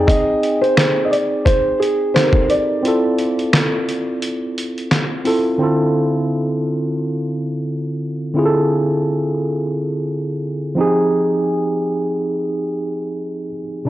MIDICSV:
0, 0, Header, 1, 4, 480
1, 0, Start_track
1, 0, Tempo, 689655
1, 55, Time_signature, 4, 2, 24, 8
1, 9670, End_track
2, 0, Start_track
2, 0, Title_t, "Felt piano"
2, 0, Program_c, 0, 0
2, 51, Note_on_c, 0, 75, 106
2, 404, Note_off_c, 0, 75, 0
2, 428, Note_on_c, 0, 72, 92
2, 730, Note_on_c, 0, 75, 74
2, 740, Note_off_c, 0, 72, 0
2, 771, Note_on_c, 0, 74, 90
2, 773, Note_off_c, 0, 75, 0
2, 1011, Note_on_c, 0, 72, 101
2, 1020, Note_off_c, 0, 74, 0
2, 1236, Note_off_c, 0, 72, 0
2, 1250, Note_on_c, 0, 68, 85
2, 1476, Note_off_c, 0, 68, 0
2, 1490, Note_on_c, 0, 72, 94
2, 1734, Note_on_c, 0, 74, 91
2, 1740, Note_off_c, 0, 72, 0
2, 3387, Note_off_c, 0, 74, 0
2, 9670, End_track
3, 0, Start_track
3, 0, Title_t, "Tine electric piano"
3, 0, Program_c, 1, 4
3, 0, Control_c, 1, 64, 127
3, 0, Note_on_c, 1, 60, 70
3, 0, Note_on_c, 1, 63, 65
3, 0, Note_on_c, 1, 68, 76
3, 0, Note_on_c, 1, 79, 62
3, 1467, Note_off_c, 1, 60, 0
3, 1473, Note_off_c, 1, 63, 0
3, 1480, Note_off_c, 1, 79, 0
3, 1485, Note_off_c, 1, 68, 0
3, 1494, Note_on_c, 1, 60, 49
3, 1498, Note_on_c, 1, 63, 45
3, 1507, Note_on_c, 1, 67, 49
3, 1512, Note_on_c, 1, 69, 45
3, 1555, Note_off_c, 1, 69, 0
3, 1556, Note_on_c, 1, 70, 52
3, 1959, Note_off_c, 1, 60, 0
3, 1968, Note_on_c, 1, 60, 70
3, 1976, Note_off_c, 1, 63, 0
3, 1981, Note_off_c, 1, 67, 0
3, 1981, Note_on_c, 1, 64, 55
3, 1983, Control_c, 1, 64, 0
3, 1991, Note_on_c, 1, 65, 66
3, 2003, Note_on_c, 1, 69, 70
3, 2005, Note_off_c, 1, 70, 0
3, 2127, Control_c, 1, 64, 127
3, 3624, Note_off_c, 1, 60, 0
3, 3630, Note_off_c, 1, 64, 0
3, 3635, Note_off_c, 1, 65, 0
3, 3641, Note_off_c, 1, 69, 0
3, 3650, Note_on_c, 1, 60, 59
3, 3655, Note_on_c, 1, 64, 54
3, 3658, Note_on_c, 1, 65, 52
3, 3667, Note_on_c, 1, 69, 67
3, 3883, Note_off_c, 1, 60, 0
3, 3884, Note_on_c, 1, 50, 71
3, 3891, Note_on_c, 1, 60, 63
3, 3895, Note_off_c, 1, 64, 0
3, 3897, Note_off_c, 1, 65, 0
3, 3901, Note_off_c, 1, 69, 0
3, 3903, Control_c, 1, 64, 0
3, 3903, Note_on_c, 1, 64, 58
3, 3909, Note_on_c, 1, 65, 59
3, 3921, Note_on_c, 1, 69, 72
3, 4046, Control_c, 1, 64, 127
3, 5782, Note_off_c, 1, 50, 0
3, 5785, Note_off_c, 1, 60, 0
3, 5791, Note_off_c, 1, 64, 0
3, 5794, Note_off_c, 1, 65, 0
3, 5800, Note_off_c, 1, 69, 0
3, 5805, Note_on_c, 1, 50, 65
3, 5812, Note_on_c, 1, 60, 57
3, 5823, Note_on_c, 1, 64, 63
3, 5830, Note_on_c, 1, 65, 58
3, 5838, Note_on_c, 1, 68, 61
3, 5878, Note_off_c, 1, 68, 0
3, 5886, Note_on_c, 1, 69, 82
3, 7462, Note_off_c, 1, 50, 0
3, 7466, Note_off_c, 1, 60, 0
3, 7471, Note_off_c, 1, 64, 0
3, 7474, Note_off_c, 1, 65, 0
3, 7482, Note_on_c, 1, 53, 68
3, 7492, Note_on_c, 1, 60, 61
3, 7502, Note_on_c, 1, 63, 64
3, 7503, Note_off_c, 1, 69, 0
3, 7503, Control_c, 1, 64, 0
3, 7509, Note_on_c, 1, 67, 61
3, 7519, Note_on_c, 1, 68, 84
3, 7644, Control_c, 1, 64, 127
3, 9380, Note_off_c, 1, 53, 0
3, 9386, Note_off_c, 1, 60, 0
3, 9391, Note_off_c, 1, 63, 0
3, 9394, Note_off_c, 1, 67, 0
3, 9399, Note_off_c, 1, 68, 0
3, 9641, Note_on_c, 1, 48, 75
3, 9665, Control_c, 1, 64, 0
3, 9670, Note_off_c, 1, 48, 0
3, 9670, End_track
4, 0, Start_track
4, 0, Title_t, "Drums"
4, 56, Note_on_c, 9, 36, 101
4, 66, Note_on_c, 9, 42, 72
4, 125, Note_off_c, 9, 36, 0
4, 136, Note_off_c, 9, 42, 0
4, 302, Note_on_c, 9, 42, 58
4, 371, Note_off_c, 9, 42, 0
4, 444, Note_on_c, 9, 42, 41
4, 514, Note_off_c, 9, 42, 0
4, 538, Note_on_c, 9, 26, 104
4, 540, Note_on_c, 9, 38, 121
4, 552, Note_on_c, 9, 42, 82
4, 607, Note_off_c, 9, 26, 0
4, 609, Note_off_c, 9, 38, 0
4, 622, Note_off_c, 9, 42, 0
4, 786, Note_on_c, 9, 42, 60
4, 856, Note_off_c, 9, 42, 0
4, 1016, Note_on_c, 9, 36, 85
4, 1024, Note_on_c, 9, 42, 83
4, 1085, Note_off_c, 9, 36, 0
4, 1093, Note_off_c, 9, 42, 0
4, 1270, Note_on_c, 9, 42, 67
4, 1339, Note_off_c, 9, 42, 0
4, 1501, Note_on_c, 9, 26, 68
4, 1503, Note_on_c, 9, 38, 85
4, 1512, Note_on_c, 9, 42, 69
4, 1571, Note_off_c, 9, 26, 0
4, 1573, Note_off_c, 9, 38, 0
4, 1582, Note_off_c, 9, 42, 0
4, 1618, Note_on_c, 9, 36, 89
4, 1688, Note_off_c, 9, 36, 0
4, 1737, Note_on_c, 9, 42, 61
4, 1806, Note_off_c, 9, 42, 0
4, 1984, Note_on_c, 9, 42, 74
4, 2054, Note_off_c, 9, 42, 0
4, 2217, Note_on_c, 9, 42, 55
4, 2287, Note_off_c, 9, 42, 0
4, 2359, Note_on_c, 9, 42, 37
4, 2429, Note_off_c, 9, 42, 0
4, 2457, Note_on_c, 9, 26, 93
4, 2459, Note_on_c, 9, 38, 127
4, 2472, Note_on_c, 9, 42, 82
4, 2527, Note_off_c, 9, 26, 0
4, 2529, Note_off_c, 9, 38, 0
4, 2541, Note_off_c, 9, 42, 0
4, 2705, Note_on_c, 9, 42, 64
4, 2775, Note_off_c, 9, 42, 0
4, 2940, Note_on_c, 9, 42, 86
4, 3009, Note_off_c, 9, 42, 0
4, 3186, Note_on_c, 9, 42, 68
4, 3255, Note_off_c, 9, 42, 0
4, 3324, Note_on_c, 9, 42, 45
4, 3393, Note_off_c, 9, 42, 0
4, 3416, Note_on_c, 9, 26, 65
4, 3418, Note_on_c, 9, 38, 84
4, 3427, Note_on_c, 9, 42, 68
4, 3486, Note_off_c, 9, 26, 0
4, 3488, Note_off_c, 9, 38, 0
4, 3497, Note_off_c, 9, 42, 0
4, 3655, Note_on_c, 9, 46, 49
4, 3724, Note_off_c, 9, 46, 0
4, 9670, End_track
0, 0, End_of_file